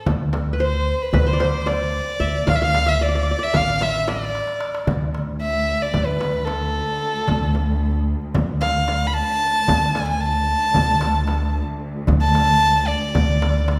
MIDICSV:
0, 0, Header, 1, 7, 480
1, 0, Start_track
1, 0, Tempo, 534283
1, 54, Time_signature, 9, 3, 24, 8
1, 12393, End_track
2, 0, Start_track
2, 0, Title_t, "Violin"
2, 0, Program_c, 0, 40
2, 550, Note_on_c, 0, 72, 75
2, 916, Note_on_c, 0, 71, 72
2, 930, Note_off_c, 0, 72, 0
2, 1020, Note_off_c, 0, 71, 0
2, 1025, Note_on_c, 0, 71, 81
2, 1149, Note_on_c, 0, 72, 79
2, 1163, Note_off_c, 0, 71, 0
2, 1509, Note_on_c, 0, 74, 91
2, 1523, Note_off_c, 0, 72, 0
2, 2237, Note_on_c, 0, 77, 93
2, 2250, Note_off_c, 0, 74, 0
2, 2295, Note_on_c, 0, 76, 74
2, 2309, Note_off_c, 0, 77, 0
2, 2371, Note_on_c, 0, 77, 99
2, 2385, Note_off_c, 0, 76, 0
2, 2593, Note_on_c, 0, 76, 88
2, 2606, Note_off_c, 0, 77, 0
2, 2719, Note_on_c, 0, 74, 88
2, 2732, Note_off_c, 0, 76, 0
2, 3084, Note_on_c, 0, 76, 95
2, 3098, Note_off_c, 0, 74, 0
2, 3205, Note_on_c, 0, 77, 93
2, 3219, Note_off_c, 0, 76, 0
2, 3437, Note_on_c, 0, 76, 88
2, 3450, Note_off_c, 0, 77, 0
2, 3670, Note_on_c, 0, 74, 80
2, 3683, Note_off_c, 0, 76, 0
2, 4383, Note_off_c, 0, 74, 0
2, 4863, Note_on_c, 0, 76, 87
2, 5227, Note_on_c, 0, 74, 79
2, 5240, Note_off_c, 0, 76, 0
2, 5441, Note_on_c, 0, 71, 77
2, 5454, Note_off_c, 0, 74, 0
2, 5795, Note_on_c, 0, 69, 84
2, 5808, Note_off_c, 0, 71, 0
2, 7145, Note_off_c, 0, 69, 0
2, 7733, Note_on_c, 0, 77, 86
2, 8149, Note_on_c, 0, 83, 72
2, 8163, Note_off_c, 0, 77, 0
2, 8213, Note_on_c, 0, 81, 107
2, 8227, Note_off_c, 0, 83, 0
2, 8948, Note_on_c, 0, 80, 81
2, 8962, Note_off_c, 0, 81, 0
2, 9048, Note_off_c, 0, 80, 0
2, 9054, Note_on_c, 0, 80, 86
2, 9165, Note_on_c, 0, 81, 97
2, 9179, Note_off_c, 0, 80, 0
2, 10433, Note_off_c, 0, 81, 0
2, 10969, Note_on_c, 0, 81, 112
2, 11566, Note_on_c, 0, 74, 89
2, 11580, Note_off_c, 0, 81, 0
2, 12393, Note_off_c, 0, 74, 0
2, 12393, End_track
3, 0, Start_track
3, 0, Title_t, "Qanun"
3, 0, Program_c, 1, 107
3, 0, Note_on_c, 1, 69, 60
3, 0, Note_on_c, 1, 72, 45
3, 149, Note_off_c, 1, 72, 0
3, 393, Note_off_c, 1, 69, 0
3, 476, Note_on_c, 1, 71, 49
3, 539, Note_on_c, 1, 72, 72
3, 593, Note_off_c, 1, 71, 0
3, 1024, Note_on_c, 1, 71, 65
3, 1078, Note_off_c, 1, 72, 0
3, 1137, Note_on_c, 1, 72, 65
3, 1191, Note_off_c, 1, 71, 0
3, 1195, Note_on_c, 1, 74, 64
3, 1257, Note_off_c, 1, 72, 0
3, 1261, Note_on_c, 1, 72, 68
3, 1490, Note_off_c, 1, 74, 0
3, 1493, Note_on_c, 1, 74, 73
3, 1976, Note_on_c, 1, 76, 77
3, 2211, Note_off_c, 1, 72, 0
3, 2218, Note_on_c, 1, 77, 92
3, 2272, Note_off_c, 1, 76, 0
3, 2349, Note_off_c, 1, 77, 0
3, 2352, Note_on_c, 1, 77, 87
3, 2378, Note_off_c, 1, 74, 0
3, 2572, Note_on_c, 1, 76, 76
3, 2626, Note_off_c, 1, 77, 0
3, 2706, Note_on_c, 1, 74, 71
3, 2769, Note_off_c, 1, 74, 0
3, 2772, Note_on_c, 1, 74, 54
3, 2829, Note_off_c, 1, 74, 0
3, 2832, Note_on_c, 1, 74, 62
3, 2897, Note_off_c, 1, 74, 0
3, 2900, Note_on_c, 1, 74, 50
3, 2971, Note_off_c, 1, 74, 0
3, 2974, Note_on_c, 1, 74, 62
3, 3039, Note_off_c, 1, 74, 0
3, 3043, Note_on_c, 1, 74, 56
3, 3178, Note_on_c, 1, 77, 77
3, 3232, Note_off_c, 1, 76, 0
3, 3430, Note_on_c, 1, 76, 63
3, 3484, Note_off_c, 1, 77, 0
3, 3661, Note_off_c, 1, 74, 0
3, 3664, Note_on_c, 1, 74, 66
3, 4254, Note_off_c, 1, 76, 0
3, 4549, Note_off_c, 1, 74, 0
3, 12393, End_track
4, 0, Start_track
4, 0, Title_t, "Cello section"
4, 0, Program_c, 2, 48
4, 4375, Note_on_c, 2, 38, 56
4, 8688, Note_off_c, 2, 38, 0
4, 8699, Note_on_c, 2, 38, 57
4, 12393, Note_off_c, 2, 38, 0
4, 12393, End_track
5, 0, Start_track
5, 0, Title_t, "Upright bass"
5, 0, Program_c, 3, 32
5, 59, Note_on_c, 3, 38, 98
5, 821, Note_off_c, 3, 38, 0
5, 1013, Note_on_c, 3, 38, 85
5, 1777, Note_off_c, 3, 38, 0
5, 1974, Note_on_c, 3, 38, 90
5, 2166, Note_off_c, 3, 38, 0
5, 2220, Note_on_c, 3, 38, 89
5, 2982, Note_off_c, 3, 38, 0
5, 3181, Note_on_c, 3, 33, 83
5, 3943, Note_off_c, 3, 33, 0
5, 4377, Note_on_c, 3, 38, 86
5, 5140, Note_off_c, 3, 38, 0
5, 5334, Note_on_c, 3, 38, 86
5, 6099, Note_off_c, 3, 38, 0
5, 6544, Note_on_c, 3, 38, 92
5, 7304, Note_off_c, 3, 38, 0
5, 7502, Note_on_c, 3, 38, 82
5, 8263, Note_off_c, 3, 38, 0
5, 8698, Note_on_c, 3, 38, 95
5, 9460, Note_off_c, 3, 38, 0
5, 9656, Note_on_c, 3, 38, 89
5, 10418, Note_off_c, 3, 38, 0
5, 10852, Note_on_c, 3, 38, 105
5, 11615, Note_off_c, 3, 38, 0
5, 11811, Note_on_c, 3, 38, 94
5, 12393, Note_off_c, 3, 38, 0
5, 12393, End_track
6, 0, Start_track
6, 0, Title_t, "Darbuka"
6, 59, Note_on_c, 9, 64, 89
6, 149, Note_off_c, 9, 64, 0
6, 305, Note_on_c, 9, 63, 52
6, 395, Note_off_c, 9, 63, 0
6, 904, Note_on_c, 9, 62, 26
6, 994, Note_off_c, 9, 62, 0
6, 1018, Note_on_c, 9, 64, 86
6, 1108, Note_off_c, 9, 64, 0
6, 1256, Note_on_c, 9, 63, 60
6, 1346, Note_off_c, 9, 63, 0
6, 1499, Note_on_c, 9, 63, 54
6, 1589, Note_off_c, 9, 63, 0
6, 1744, Note_on_c, 9, 62, 23
6, 1834, Note_off_c, 9, 62, 0
6, 2227, Note_on_c, 9, 64, 98
6, 2317, Note_off_c, 9, 64, 0
6, 2348, Note_on_c, 9, 62, 24
6, 2437, Note_off_c, 9, 62, 0
6, 2465, Note_on_c, 9, 63, 55
6, 2555, Note_off_c, 9, 63, 0
6, 2707, Note_on_c, 9, 62, 27
6, 2797, Note_off_c, 9, 62, 0
6, 3068, Note_on_c, 9, 62, 24
6, 3158, Note_off_c, 9, 62, 0
6, 3183, Note_on_c, 9, 64, 84
6, 3272, Note_off_c, 9, 64, 0
6, 3425, Note_on_c, 9, 63, 61
6, 3515, Note_off_c, 9, 63, 0
6, 3662, Note_on_c, 9, 63, 61
6, 3752, Note_off_c, 9, 63, 0
6, 3907, Note_on_c, 9, 63, 47
6, 3997, Note_off_c, 9, 63, 0
6, 4019, Note_on_c, 9, 62, 56
6, 4109, Note_off_c, 9, 62, 0
6, 4137, Note_on_c, 9, 63, 73
6, 4227, Note_off_c, 9, 63, 0
6, 4263, Note_on_c, 9, 62, 84
6, 4353, Note_off_c, 9, 62, 0
6, 4380, Note_on_c, 9, 64, 97
6, 4470, Note_off_c, 9, 64, 0
6, 4622, Note_on_c, 9, 63, 56
6, 4712, Note_off_c, 9, 63, 0
6, 5224, Note_on_c, 9, 62, 24
6, 5314, Note_off_c, 9, 62, 0
6, 5339, Note_on_c, 9, 64, 81
6, 5429, Note_off_c, 9, 64, 0
6, 5577, Note_on_c, 9, 63, 62
6, 5667, Note_off_c, 9, 63, 0
6, 5817, Note_on_c, 9, 63, 59
6, 5907, Note_off_c, 9, 63, 0
6, 6063, Note_on_c, 9, 62, 25
6, 6152, Note_off_c, 9, 62, 0
6, 6298, Note_on_c, 9, 62, 23
6, 6388, Note_off_c, 9, 62, 0
6, 6537, Note_on_c, 9, 64, 85
6, 6627, Note_off_c, 9, 64, 0
6, 7380, Note_on_c, 9, 62, 23
6, 7469, Note_off_c, 9, 62, 0
6, 7497, Note_on_c, 9, 64, 86
6, 7587, Note_off_c, 9, 64, 0
6, 7740, Note_on_c, 9, 63, 68
6, 7830, Note_off_c, 9, 63, 0
6, 7976, Note_on_c, 9, 63, 66
6, 8066, Note_off_c, 9, 63, 0
6, 8222, Note_on_c, 9, 62, 26
6, 8312, Note_off_c, 9, 62, 0
6, 8461, Note_on_c, 9, 62, 28
6, 8551, Note_off_c, 9, 62, 0
6, 8697, Note_on_c, 9, 64, 99
6, 8787, Note_off_c, 9, 64, 0
6, 8938, Note_on_c, 9, 63, 66
6, 9028, Note_off_c, 9, 63, 0
6, 9539, Note_on_c, 9, 62, 26
6, 9629, Note_off_c, 9, 62, 0
6, 9651, Note_on_c, 9, 64, 89
6, 9741, Note_off_c, 9, 64, 0
6, 9889, Note_on_c, 9, 63, 74
6, 9979, Note_off_c, 9, 63, 0
6, 10128, Note_on_c, 9, 63, 62
6, 10217, Note_off_c, 9, 63, 0
6, 10367, Note_on_c, 9, 62, 23
6, 10457, Note_off_c, 9, 62, 0
6, 10602, Note_on_c, 9, 62, 26
6, 10692, Note_off_c, 9, 62, 0
6, 10846, Note_on_c, 9, 64, 85
6, 10936, Note_off_c, 9, 64, 0
6, 10971, Note_on_c, 9, 62, 22
6, 11061, Note_off_c, 9, 62, 0
6, 11093, Note_on_c, 9, 63, 63
6, 11183, Note_off_c, 9, 63, 0
6, 11816, Note_on_c, 9, 64, 84
6, 11906, Note_off_c, 9, 64, 0
6, 12059, Note_on_c, 9, 63, 73
6, 12149, Note_off_c, 9, 63, 0
6, 12292, Note_on_c, 9, 63, 66
6, 12382, Note_off_c, 9, 63, 0
6, 12393, End_track
7, 0, Start_track
7, 0, Title_t, "Frame drum"
7, 57, Note_on_c, 9, 64, 91
7, 147, Note_off_c, 9, 64, 0
7, 296, Note_on_c, 9, 64, 75
7, 386, Note_off_c, 9, 64, 0
7, 1020, Note_on_c, 9, 64, 96
7, 1110, Note_off_c, 9, 64, 0
7, 1262, Note_on_c, 9, 64, 75
7, 1351, Note_off_c, 9, 64, 0
7, 1501, Note_on_c, 9, 64, 69
7, 1590, Note_off_c, 9, 64, 0
7, 2223, Note_on_c, 9, 64, 85
7, 2313, Note_off_c, 9, 64, 0
7, 2464, Note_on_c, 9, 64, 75
7, 2554, Note_off_c, 9, 64, 0
7, 3176, Note_on_c, 9, 64, 87
7, 3266, Note_off_c, 9, 64, 0
7, 3420, Note_on_c, 9, 64, 78
7, 3510, Note_off_c, 9, 64, 0
7, 3662, Note_on_c, 9, 64, 72
7, 3752, Note_off_c, 9, 64, 0
7, 4378, Note_on_c, 9, 64, 83
7, 4468, Note_off_c, 9, 64, 0
7, 5333, Note_on_c, 9, 64, 86
7, 5422, Note_off_c, 9, 64, 0
7, 5575, Note_on_c, 9, 64, 63
7, 5665, Note_off_c, 9, 64, 0
7, 5814, Note_on_c, 9, 64, 62
7, 5904, Note_off_c, 9, 64, 0
7, 6540, Note_on_c, 9, 64, 83
7, 6630, Note_off_c, 9, 64, 0
7, 6782, Note_on_c, 9, 64, 61
7, 6871, Note_off_c, 9, 64, 0
7, 7501, Note_on_c, 9, 64, 91
7, 7590, Note_off_c, 9, 64, 0
7, 7742, Note_on_c, 9, 64, 66
7, 7831, Note_off_c, 9, 64, 0
7, 7980, Note_on_c, 9, 64, 66
7, 8070, Note_off_c, 9, 64, 0
7, 8704, Note_on_c, 9, 64, 92
7, 8794, Note_off_c, 9, 64, 0
7, 8941, Note_on_c, 9, 64, 78
7, 9030, Note_off_c, 9, 64, 0
7, 9662, Note_on_c, 9, 64, 96
7, 9751, Note_off_c, 9, 64, 0
7, 9902, Note_on_c, 9, 64, 68
7, 9991, Note_off_c, 9, 64, 0
7, 10138, Note_on_c, 9, 64, 65
7, 10228, Note_off_c, 9, 64, 0
7, 10855, Note_on_c, 9, 64, 83
7, 10945, Note_off_c, 9, 64, 0
7, 11096, Note_on_c, 9, 64, 65
7, 11186, Note_off_c, 9, 64, 0
7, 11813, Note_on_c, 9, 64, 87
7, 11903, Note_off_c, 9, 64, 0
7, 12058, Note_on_c, 9, 64, 70
7, 12148, Note_off_c, 9, 64, 0
7, 12289, Note_on_c, 9, 64, 64
7, 12379, Note_off_c, 9, 64, 0
7, 12393, End_track
0, 0, End_of_file